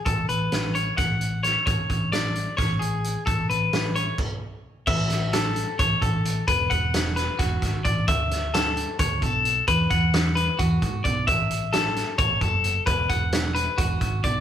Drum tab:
CC |-------|-------|----x--|x------|
HH |xxxxxxx|xxxxxxx|xxxx---|-xxxxxx|
SD |--o-o-o|--o-o--|--o----|-oo----|
BD |o---o--|oo--o--|o---o--|o---oo-|

CC |-------|-------|-------|-------|
HH |xxxxxxx|xxxxxxx|xxxxxxx|xxxxxxx|
SD |--oooo-|-oo----|--o----|--oo---|
BD |oo--ooo|o---oo-|oo--ooo|o---oo-|

CC |-------|
HH |xxxxxxx|
SD |--o----|
BD |oo--ooo|